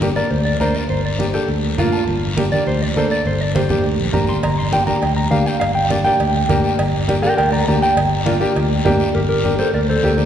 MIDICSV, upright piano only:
0, 0, Header, 1, 2, 480
1, 0, Start_track
1, 0, Key_signature, -2, "minor"
1, 0, Tempo, 294551
1, 1463, Time_signature, 4, 2, 24, 8
1, 16708, End_track
2, 0, Start_track
2, 0, Title_t, "Upright piano"
2, 0, Program_c, 0, 0
2, 13, Note_on_c, 0, 58, 82
2, 23, Note_on_c, 0, 62, 65
2, 30, Note_on_c, 0, 67, 88
2, 102, Note_off_c, 0, 58, 0
2, 108, Note_off_c, 0, 62, 0
2, 111, Note_off_c, 0, 67, 0
2, 251, Note_on_c, 0, 58, 63
2, 258, Note_on_c, 0, 62, 62
2, 267, Note_on_c, 0, 70, 69
2, 510, Note_off_c, 0, 58, 0
2, 513, Note_off_c, 0, 62, 0
2, 517, Note_off_c, 0, 70, 0
2, 978, Note_on_c, 0, 62, 68
2, 979, Note_on_c, 0, 58, 73
2, 987, Note_on_c, 0, 70, 84
2, 1317, Note_off_c, 0, 58, 0
2, 1317, Note_off_c, 0, 62, 0
2, 1321, Note_off_c, 0, 70, 0
2, 1934, Note_on_c, 0, 58, 68
2, 1940, Note_on_c, 0, 62, 61
2, 1943, Note_on_c, 0, 67, 77
2, 2022, Note_off_c, 0, 58, 0
2, 2025, Note_off_c, 0, 62, 0
2, 2027, Note_off_c, 0, 67, 0
2, 2176, Note_on_c, 0, 58, 61
2, 2177, Note_on_c, 0, 62, 59
2, 2188, Note_on_c, 0, 69, 73
2, 2432, Note_off_c, 0, 58, 0
2, 2432, Note_off_c, 0, 62, 0
2, 2437, Note_off_c, 0, 69, 0
2, 2900, Note_on_c, 0, 58, 90
2, 2909, Note_on_c, 0, 74, 74
2, 2911, Note_on_c, 0, 62, 81
2, 2921, Note_on_c, 0, 65, 100
2, 3129, Note_off_c, 0, 74, 0
2, 3140, Note_on_c, 0, 81, 64
2, 3238, Note_off_c, 0, 58, 0
2, 3243, Note_off_c, 0, 62, 0
2, 3248, Note_off_c, 0, 65, 0
2, 3364, Note_off_c, 0, 81, 0
2, 3855, Note_on_c, 0, 58, 78
2, 3863, Note_on_c, 0, 62, 71
2, 3869, Note_on_c, 0, 67, 86
2, 3943, Note_off_c, 0, 58, 0
2, 3947, Note_off_c, 0, 62, 0
2, 3950, Note_off_c, 0, 67, 0
2, 4120, Note_on_c, 0, 58, 69
2, 4123, Note_on_c, 0, 62, 61
2, 4130, Note_on_c, 0, 67, 76
2, 4363, Note_off_c, 0, 58, 0
2, 4365, Note_off_c, 0, 62, 0
2, 4368, Note_off_c, 0, 67, 0
2, 4826, Note_on_c, 0, 58, 78
2, 4827, Note_on_c, 0, 62, 70
2, 4842, Note_on_c, 0, 69, 78
2, 5160, Note_off_c, 0, 58, 0
2, 5161, Note_off_c, 0, 62, 0
2, 5169, Note_off_c, 0, 69, 0
2, 5773, Note_on_c, 0, 58, 63
2, 5782, Note_on_c, 0, 62, 62
2, 5788, Note_on_c, 0, 67, 79
2, 5862, Note_off_c, 0, 58, 0
2, 5867, Note_off_c, 0, 62, 0
2, 5869, Note_off_c, 0, 67, 0
2, 6028, Note_on_c, 0, 58, 64
2, 6037, Note_on_c, 0, 62, 61
2, 6038, Note_on_c, 0, 67, 71
2, 6277, Note_off_c, 0, 58, 0
2, 6282, Note_off_c, 0, 62, 0
2, 6283, Note_off_c, 0, 67, 0
2, 6724, Note_on_c, 0, 58, 74
2, 6732, Note_on_c, 0, 62, 70
2, 6736, Note_on_c, 0, 67, 82
2, 7070, Note_off_c, 0, 58, 0
2, 7073, Note_off_c, 0, 62, 0
2, 7075, Note_off_c, 0, 67, 0
2, 7689, Note_on_c, 0, 58, 68
2, 7693, Note_on_c, 0, 62, 59
2, 7701, Note_on_c, 0, 67, 69
2, 7780, Note_off_c, 0, 58, 0
2, 7782, Note_off_c, 0, 62, 0
2, 7786, Note_off_c, 0, 67, 0
2, 7933, Note_on_c, 0, 58, 67
2, 7940, Note_on_c, 0, 62, 58
2, 7949, Note_on_c, 0, 67, 72
2, 8190, Note_off_c, 0, 58, 0
2, 8194, Note_off_c, 0, 62, 0
2, 8198, Note_off_c, 0, 67, 0
2, 8649, Note_on_c, 0, 58, 73
2, 8650, Note_on_c, 0, 62, 69
2, 8660, Note_on_c, 0, 67, 81
2, 8992, Note_off_c, 0, 58, 0
2, 8993, Note_off_c, 0, 62, 0
2, 8998, Note_off_c, 0, 67, 0
2, 9613, Note_on_c, 0, 58, 69
2, 9615, Note_on_c, 0, 62, 65
2, 9627, Note_on_c, 0, 67, 74
2, 9703, Note_off_c, 0, 58, 0
2, 9704, Note_off_c, 0, 62, 0
2, 9710, Note_off_c, 0, 67, 0
2, 9858, Note_on_c, 0, 58, 69
2, 9870, Note_on_c, 0, 62, 66
2, 9873, Note_on_c, 0, 67, 73
2, 10113, Note_off_c, 0, 58, 0
2, 10119, Note_off_c, 0, 62, 0
2, 10121, Note_off_c, 0, 67, 0
2, 10575, Note_on_c, 0, 58, 94
2, 10580, Note_on_c, 0, 62, 83
2, 10589, Note_on_c, 0, 67, 96
2, 10916, Note_off_c, 0, 58, 0
2, 10918, Note_off_c, 0, 62, 0
2, 10923, Note_off_c, 0, 67, 0
2, 11533, Note_on_c, 0, 58, 77
2, 11542, Note_on_c, 0, 62, 75
2, 11548, Note_on_c, 0, 67, 92
2, 11623, Note_off_c, 0, 58, 0
2, 11628, Note_off_c, 0, 62, 0
2, 11630, Note_off_c, 0, 67, 0
2, 11782, Note_on_c, 0, 58, 70
2, 11789, Note_on_c, 0, 62, 61
2, 11794, Note_on_c, 0, 67, 75
2, 12035, Note_off_c, 0, 58, 0
2, 12039, Note_off_c, 0, 62, 0
2, 12042, Note_off_c, 0, 67, 0
2, 12506, Note_on_c, 0, 58, 76
2, 12515, Note_on_c, 0, 62, 68
2, 12521, Note_on_c, 0, 67, 82
2, 12842, Note_off_c, 0, 58, 0
2, 12846, Note_off_c, 0, 62, 0
2, 12849, Note_off_c, 0, 67, 0
2, 13453, Note_on_c, 0, 58, 86
2, 13461, Note_on_c, 0, 62, 77
2, 13466, Note_on_c, 0, 65, 90
2, 13544, Note_off_c, 0, 58, 0
2, 13547, Note_off_c, 0, 62, 0
2, 13550, Note_off_c, 0, 65, 0
2, 13690, Note_on_c, 0, 58, 83
2, 13700, Note_on_c, 0, 62, 71
2, 13702, Note_on_c, 0, 67, 96
2, 13950, Note_off_c, 0, 58, 0
2, 13955, Note_off_c, 0, 62, 0
2, 13956, Note_off_c, 0, 67, 0
2, 14417, Note_on_c, 0, 58, 89
2, 14422, Note_on_c, 0, 62, 87
2, 14424, Note_on_c, 0, 67, 103
2, 14758, Note_off_c, 0, 58, 0
2, 14760, Note_off_c, 0, 62, 0
2, 14761, Note_off_c, 0, 67, 0
2, 15376, Note_on_c, 0, 58, 65
2, 15387, Note_on_c, 0, 62, 63
2, 15393, Note_on_c, 0, 67, 76
2, 15717, Note_off_c, 0, 58, 0
2, 15723, Note_off_c, 0, 62, 0
2, 15726, Note_off_c, 0, 67, 0
2, 16348, Note_on_c, 0, 58, 74
2, 16353, Note_on_c, 0, 62, 71
2, 16357, Note_on_c, 0, 67, 88
2, 16431, Note_off_c, 0, 58, 0
2, 16434, Note_off_c, 0, 62, 0
2, 16436, Note_off_c, 0, 67, 0
2, 16574, Note_on_c, 0, 58, 67
2, 16579, Note_on_c, 0, 62, 62
2, 16593, Note_on_c, 0, 67, 71
2, 16708, Note_off_c, 0, 58, 0
2, 16708, Note_off_c, 0, 62, 0
2, 16708, Note_off_c, 0, 67, 0
2, 16708, End_track
0, 0, End_of_file